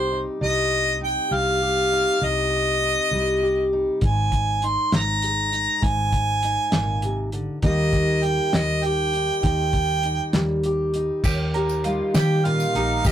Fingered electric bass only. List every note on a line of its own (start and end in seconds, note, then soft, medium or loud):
0.00 0.25 C2 medium
0.41 1.15 C2 medium
1.31 2.05 C2 medium
2.21 2.95 C2 medium
3.11 3.85 C2 medium
4.02 4.76 G#1 medium
4.92 5.66 G#1 medium
5.82 6.56 G#1 medium
6.73 7.47 G#1 medium
7.62 8.37 D#2 medium
8.54 9.28 D#2 medium
9.43 10.17 D#2 medium
10.34 11.08 D#2 medium
11.24 11.98 D#2 medium
12.15 12.64 D#3 medium
12.75 12.99 A#1 medium
13.05 13.12 D#2 medium